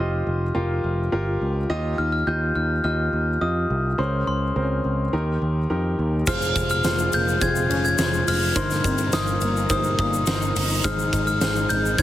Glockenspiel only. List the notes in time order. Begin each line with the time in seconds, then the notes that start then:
1.98 F6
2.12 F6
2.27 G6
2.56 F6
2.84 F6
3.41 D#6
3.99 C6
4.27 C6
6.27 F6
6.71 F6
7.14 G6
7.42 G#6
7.85 G#6
8.28 F6
8.57 C6
9.13 D#6
9.71 D#6
9.99 D#6
10.84 F6
11.27 F6
11.69 G6
11.99 G#6